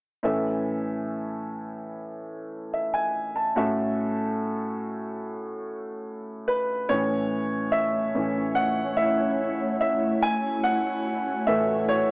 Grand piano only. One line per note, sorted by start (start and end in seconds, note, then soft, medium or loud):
0.23 3.53 A2 soft
0.23 3.53 E3 soft
0.23 3.11 C#4 soft
0.23 3.12 E4 soft
0.23 3.12 A4 soft
0.23 2.71 E5 medium
2.74 2.94 E5 soft
2.94 3.34 G#5 soft
3.36 3.76 A5 soft
3.56 6.86 A2 soft
3.56 6.86 A3 soft
3.56 6.86 C#4 soft
3.56 6.86 F#4 soft
3.56 6.86 A4 soft
3.56 6.87 E5 medium
6.48 6.57 B4 medium
6.89 7.45 A2 soft
6.89 7.46 E3 soft
6.89 7.46 C#4 soft
6.89 7.76 C#5 medium
7.72 8.59 E5 medium
8.15 8.53 A2 soft
8.15 8.53 E3 soft
8.15 8.53 C#4 soft
8.55 8.95 F#5 medium
8.97 9.79 E5 medium
9.81 10.24 E5 medium
10.22 10.66 G#5 medium
10.63 11.50 F#5 medium
11.47 12.11 A2 soft
11.47 12.11 E3 soft
11.47 12.11 A3 soft
11.47 11.91 E5 medium
11.89 12.11 C#5 medium